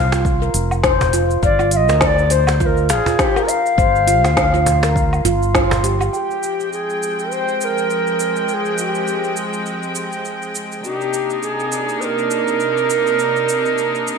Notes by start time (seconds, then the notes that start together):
Already playing: C2 F5
0.12 F4, cajon slap, cabasa
0.25 kick, cabasa
0.42 A#4, cabasa
0.54 F1, open hi-hat, cabasa
0.71 cabasa, low woodblock
0.84 C5, kick, snare, cabasa
1.01 cajon bass, cabasa
1.13 F4, open hi-hat, cabasa
1.31 cabasa
1.43 G1 D5 F5, kick, cabasa
1.59 F4, cabasa, low woodblock
1.71 F5, open hi-hat, cabasa
1.76 D#5
1.89 D2 A#4, cajon slap, cabasa
2.01 D#5, kick, snare, cabasa
2.05 D5
2.19 cabasa
2.30 C5, open hi-hat, cabasa
2.47 cajon slap, cabasa, low woodblock
2.60 F4 C5, kick, cabasa
2.65 A#4
2.77 cabasa
2.89 G#4 F5, cajon slap, open hi-hat, cabasa
3.06 F4, cajon bass, cabasa
3.19 G4, kick, snare, cabasa
3.36 A#4, cabasa, low woodblock
3.48 F5, open hi-hat, cabasa
3.66 cabasa
3.78 G1 C5, kick, cabasa
3.96 cabasa
4.08 F4, open hi-hat, cabasa
4.24 D2, snare, cajon slap, cabasa, low woodblock
4.37 F5, kick, snare, cabasa
4.54 F4, cabasa
4.66 cajon bass, open hi-hat, cabasa
4.83 A#4, cajon slap, cabasa
4.96 kick, cabasa
5.13 cabasa, low woodblock
5.25 G1 F4, open hi-hat, cabasa
5.43 cabasa
5.55 F4, kick, snare, cabasa
5.71 cajon bass, cabasa
5.84 G4, open hi-hat, cabasa
6.01 G4, cabasa, low woodblock
6.13 F3 G#3 C4 G#4 G5, cabasa
6.18 G4
6.31 cabasa
6.43 cabasa
6.60 cabasa
6.72 G#4, cabasa
6.90 cabasa
7.03 cabasa
7.19 cabasa
7.31 C5, cabasa
7.48 cabasa
7.61 A#4 C5, cabasa
7.78 cabasa
7.90 cabasa
8.07 cabasa
8.20 cabasa
8.36 cabasa
8.48 A#4, cabasa
8.53 G#4
8.65 cabasa
8.78 G4, cabasa
8.95 cabasa
9.07 cabasa
9.24 cabasa
9.36 cabasa
9.53 cabasa
9.66 cabasa
9.83 cabasa
9.95 cabasa
10.12 cabasa
10.25 cabasa
10.42 cabasa
10.55 cabasa
10.72 cabasa
10.83 C3 A#3 D4 D#4 G4, cabasa
11.01 cabasa
11.13 cabasa
11.30 cabasa
11.42 G#4, cabasa
11.60 cabasa
11.72 cabasa
11.89 cabasa
12.00 A#4 C5, cabasa
12.18 cabasa
12.31 cabasa
12.48 cabasa
12.60 cabasa
12.78 cabasa
12.90 cabasa
13.07 cabasa
13.19 cabasa
13.36 cabasa
13.49 cabasa
13.66 cabasa
13.78 cabasa
13.95 cabasa
14.07 cabasa